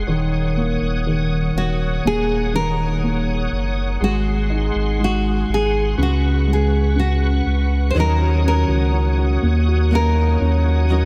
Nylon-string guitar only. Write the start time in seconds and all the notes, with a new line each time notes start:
1.58 F#4
2.07 G#4
2.56 A#4
4.04 F#4
5.04 F#4
5.54 G#4
6.03 F#4
6.53 G#4
6.99 F#4
7.91 C5
8.00 A#4
8.48 A#4
9.95 A#4